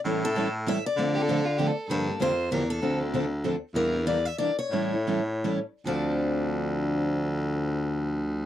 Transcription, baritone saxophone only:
X:1
M:3/4
L:1/8
Q:"Swing" 1/4=195
K:Dm
V:1 name="Baritone saxophone" clef=bass
A,,6 | D,6 | G,,2 F,,2 E,,2 | D,,6 |
E,,4 z2 | A,,6 | D,,6- | D,,6 |]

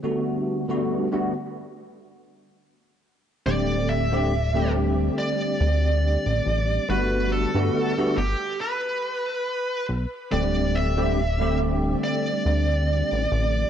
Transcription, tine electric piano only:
X:1
M:4/4
L:1/16
Q:"Swing 16ths" 1/4=70
K:G
V:1 name="Tine electric piano"
[D,G,A,B,F]3 [D,G,A,B,F]2 [D,G,A,B,F] z8 z2 | [D,G,A,CG]3 [D,G,A,CG] z [D,G,A,CG]8- [D,G,A,CG]3 | [D,G,A,B,F]3 [D,G,A,B,F]2 [D,G,A,B,F] z8 z2 | [D,G,A,CG]3 [D,G,A,CG] z [D,G,A,CG]8- [D,G,A,CG]3 |]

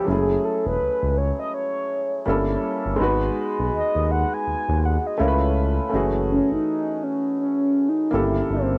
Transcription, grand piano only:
X:1
M:4/4
L:1/8
Q:"Swing 16ths" 1/4=82
K:F#dor
V:1 name="Grand piano"
[F,G,A,CEG]6 [=G,_B,_DEA]2 | [G,B,DFB]6 [A,CE^E^AB]2 | [E,A,CFG]6 [_D,_B,E=GA]2 |]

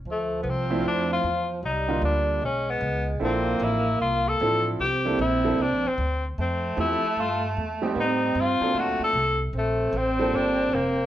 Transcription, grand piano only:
X:1
M:4/4
L:1/8
Q:"Swing" 1/4=152
K:Dm
V:1 name="Grand piano"
z3 [F,A,CDE]3 z2 | z [D,G,B,DF]3 z4 | [F,CDEA]3 z3 [F,CDEA]2 | z [G,B,DEA] z [G,B,DEA] z4 |
z2 [F,A,CEG] z4 [G,A,C_EG]- | [G,A,C_EG]2 z [B,,^F,CDA]3 z2 | z3 [G,B,DFA]3 z2 |]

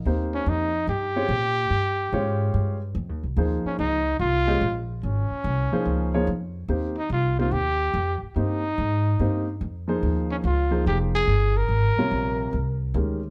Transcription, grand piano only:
X:1
M:4/4
L:1/8
Q:"Swing" 1/4=144
K:Ebmix
V:1 name="Grand piano"
[B,CEGc]3 z2 [CDFAd] z2 | z2 [A,DFcd]3 z3 | [F,B,EAc]3 z2 [A,DGce] z2 | z3 [F,B,EAc]2 [F,B,EAd] z2 |
[B,CEGc] z2 [B,CEGc] z4 | [B,CEGc] z3 [B,CEGc] z2 [F,B,EAc]- | [F,B,EAc]2 z [F,B,EAc]3 z2 | z [C,G,FBd]3 z2 [E,A,DGB] z |]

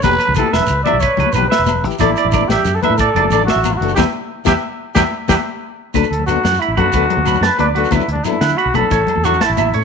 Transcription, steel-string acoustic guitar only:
X:1
M:12/8
L:1/8
Q:3/8=122
K:D
V:1 name="Steel-string acoustic guitar"
[E,B,EG] z [E,B,EG] z2 [E,B,EG] z2 [E,B,EG] z2 [E,EG] | [E,A,DA] z [E,A,D] z2 [E,A,DA] z2 [E,A,DA] z2 [E,A,DA] | [G,B,E] z2 [G,B,E] z2 [G,B,E] z [G,B,E] z3 | [F,DA] z [F,B,DA] z2 [F,B,DA] [F,B,DA] z [F,B,D] z2 [F,B,DA] |
[F,B,DA] z [F,B,DA] z2 [F,B,DA] [EA] z [CEA] z2 [CEA] |]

